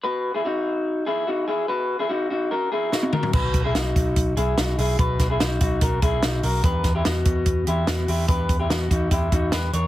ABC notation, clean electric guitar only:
X:1
M:4/4
L:1/16
Q:1/4=146
K:B
V:1 name="Clean electric guitar"
[FB]3 [EG] [DF]6 [EG]2 [DF]2 [EG]2 | [FB]3 [EG] [DF]2 [DF]2 [FA]2 [EG]2 [DF]2 [FA]2 | [FB]3 [EG] [DF]6 [EG]2 [DF]2 [EG]2 | [FB]3 [EG] [DF]2 [DF]2 [FA]2 [EG]2 [DF]2 [FA]2 |
[=GB]3 [EG] [B,F]6 [EG]2 [B,F]2 [EG]2 | [=GB]3 [EG] [B,F]2 [DF]2 [EG]2 [DF]2 [GB]2 [Ac]2 |]